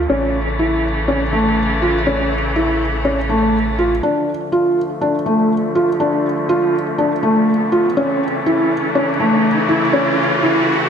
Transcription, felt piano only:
0, 0, Header, 1, 2, 480
1, 0, Start_track
1, 0, Key_signature, -1, "minor"
1, 0, Tempo, 491803
1, 98, Time_signature, 4, 2, 24, 8
1, 10630, End_track
2, 0, Start_track
2, 0, Title_t, "Felt piano"
2, 0, Program_c, 0, 0
2, 93, Note_on_c, 0, 61, 80
2, 346, Note_off_c, 0, 61, 0
2, 577, Note_on_c, 0, 64, 73
2, 829, Note_off_c, 0, 64, 0
2, 1054, Note_on_c, 0, 61, 74
2, 1181, Note_off_c, 0, 61, 0
2, 1295, Note_on_c, 0, 57, 65
2, 1547, Note_off_c, 0, 57, 0
2, 1775, Note_on_c, 0, 65, 62
2, 1901, Note_off_c, 0, 65, 0
2, 2017, Note_on_c, 0, 61, 80
2, 2268, Note_off_c, 0, 61, 0
2, 2497, Note_on_c, 0, 64, 73
2, 2748, Note_off_c, 0, 64, 0
2, 2975, Note_on_c, 0, 61, 75
2, 3101, Note_off_c, 0, 61, 0
2, 3215, Note_on_c, 0, 57, 72
2, 3467, Note_off_c, 0, 57, 0
2, 3694, Note_on_c, 0, 65, 64
2, 3821, Note_off_c, 0, 65, 0
2, 3935, Note_on_c, 0, 62, 81
2, 4187, Note_off_c, 0, 62, 0
2, 4414, Note_on_c, 0, 65, 72
2, 4666, Note_off_c, 0, 65, 0
2, 4894, Note_on_c, 0, 62, 74
2, 5020, Note_off_c, 0, 62, 0
2, 5133, Note_on_c, 0, 57, 68
2, 5386, Note_off_c, 0, 57, 0
2, 5614, Note_on_c, 0, 65, 68
2, 5741, Note_off_c, 0, 65, 0
2, 5855, Note_on_c, 0, 62, 79
2, 6107, Note_off_c, 0, 62, 0
2, 6335, Note_on_c, 0, 65, 80
2, 6587, Note_off_c, 0, 65, 0
2, 6816, Note_on_c, 0, 62, 74
2, 6942, Note_off_c, 0, 62, 0
2, 7054, Note_on_c, 0, 57, 73
2, 7307, Note_off_c, 0, 57, 0
2, 7535, Note_on_c, 0, 65, 70
2, 7661, Note_off_c, 0, 65, 0
2, 7779, Note_on_c, 0, 61, 84
2, 8030, Note_off_c, 0, 61, 0
2, 8259, Note_on_c, 0, 64, 83
2, 8510, Note_off_c, 0, 64, 0
2, 8737, Note_on_c, 0, 61, 75
2, 8863, Note_off_c, 0, 61, 0
2, 8977, Note_on_c, 0, 57, 72
2, 9229, Note_off_c, 0, 57, 0
2, 9455, Note_on_c, 0, 64, 70
2, 9581, Note_off_c, 0, 64, 0
2, 9694, Note_on_c, 0, 61, 85
2, 9947, Note_off_c, 0, 61, 0
2, 10175, Note_on_c, 0, 64, 77
2, 10427, Note_off_c, 0, 64, 0
2, 10630, End_track
0, 0, End_of_file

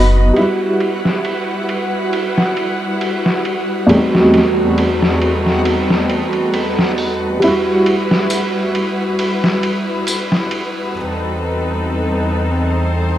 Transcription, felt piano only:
0, 0, Header, 1, 2, 480
1, 0, Start_track
1, 0, Key_signature, 1, "minor"
1, 0, Tempo, 882353
1, 200, Time_signature, 4, 2, 24, 8
1, 7171, End_track
2, 0, Start_track
2, 0, Title_t, "Felt piano"
2, 0, Program_c, 0, 0
2, 0, Control_c, 0, 64, 127
2, 0, Note_on_c, 0, 54, 87
2, 0, Note_on_c, 0, 59, 82
2, 0, Note_on_c, 0, 63, 95
2, 169, Note_off_c, 0, 54, 0
2, 175, Note_off_c, 0, 59, 0
2, 180, Note_off_c, 0, 63, 0
2, 182, Note_on_c, 0, 55, 65
2, 205, Note_on_c, 0, 64, 61
2, 206, Control_c, 0, 64, 0
2, 226, Note_on_c, 0, 66, 66
2, 313, Control_c, 0, 64, 127
2, 2084, Note_off_c, 0, 55, 0
2, 2095, Note_off_c, 0, 64, 0
2, 2103, Note_on_c, 0, 40, 67
2, 2106, Note_off_c, 0, 66, 0
2, 2112, Note_on_c, 0, 55, 61
2, 2121, Note_on_c, 0, 57, 62
2, 2126, Control_c, 0, 64, 0
2, 2131, Note_on_c, 0, 60, 61
2, 2139, Note_on_c, 0, 63, 59
2, 2148, Note_on_c, 0, 66, 69
2, 2219, Control_c, 0, 64, 127
2, 4004, Note_off_c, 0, 40, 0
2, 4009, Note_off_c, 0, 55, 0
2, 4013, Note_off_c, 0, 57, 0
2, 4018, Note_off_c, 0, 60, 0
2, 4022, Note_off_c, 0, 63, 0
2, 4024, Note_on_c, 0, 55, 66
2, 4027, Note_off_c, 0, 66, 0
2, 4045, Note_on_c, 0, 64, 60
2, 4046, Control_c, 0, 64, 0
2, 4067, Note_on_c, 0, 66, 75
2, 4125, Control_c, 0, 64, 127
2, 5925, Note_off_c, 0, 55, 0
2, 5935, Note_off_c, 0, 64, 0
2, 5946, Note_off_c, 0, 66, 0
2, 5967, Control_c, 0, 64, 0
2, 7171, End_track
0, 0, End_of_file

